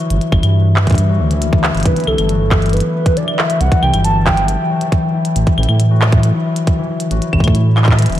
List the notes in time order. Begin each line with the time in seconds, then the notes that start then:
Already playing: E3 F#3 E4
0.10 G1, closed hi-hat
0.21 closed hi-hat
0.32 G1 E4, kick, claves
0.43 G2 E3, closed hi-hat, claves
0.76 E3, clap
0.87 E3, kick, closed hi-hat
0.90 kick, closed hi-hat
0.92 kick, closed hi-hat
0.95 closed hi-hat
0.98 closed hi-hat
1.09 F#3
1.20 D2 G3
1.31 E3, closed hi-hat
1.42 A#3, closed hi-hat
1.53 A3, kick
1.64 E3, clap
1.75 G1 D3, closed hi-hat
1.77 closed hi-hat
1.80 closed hi-hat
1.83 C2 B4, kick, closed hi-hat
1.86 closed hi-hat
1.96 E3, closed hi-hat
2.00 closed hi-hat
2.04 C2 E3 A4, closed hi-hat, claves
2.18 G1, closed hi-hat, claves
2.29 F#3, closed hi-hat
2.40 E3
2.51 kick, clap, claves
2.62 closed hi-hat
2.66 closed hi-hat
2.69 E4, closed hi-hat
2.73 B4, closed hi-hat
2.77 closed hi-hat
2.80 closed hi-hat
3.06 kick, closed hi-hat
3.17 E3 D5, closed hi-hat
3.28 E3, claves
3.39 E5, clap
3.50 F#3, closed hi-hat
3.61 C2 E3 F#5, closed hi-hat
3.72 kick, closed hi-hat
3.83 C2 G5, claves
3.94 G1 E4, closed hi-hat, claves
4.05 A5, closed hi-hat
4.26 G5, kick, clap
4.37 E3, closed hi-hat
4.48 E3, closed hi-hat
4.70 F#3
4.81 E3, closed hi-hat
4.92 kick, closed hi-hat
5.14 E4
5.25 closed hi-hat
5.36 A1, closed hi-hat
5.47 kick, closed hi-hat
5.58 A1 E3, claves
5.63 closed hi-hat
5.69 A2 E3, claves
5.80 closed hi-hat
5.91 F#3
6.02 E3, clap, claves
6.12 kick, closed hi-hat
6.23 closed hi-hat
6.34 E4
6.56 closed hi-hat
6.67 kick, closed hi-hat
6.78 E3
6.89 E3
7.00 closed hi-hat
7.11 A1 F#3, closed hi-hat
7.22 E3, closed hi-hat
7.33 A1, kick, claves
7.40 A2, kick, closed hi-hat, claves
7.48 kick
7.55 E4, closed hi-hat
7.77 clap, claves
7.84 kick, clap, claves
7.91 clap, claves
7.99 E3, closed hi-hat
8.02 closed hi-hat
8.06 E1, closed hi-hat
8.10 E3, closed hi-hat
8.12 closed hi-hat
8.15 closed hi-hat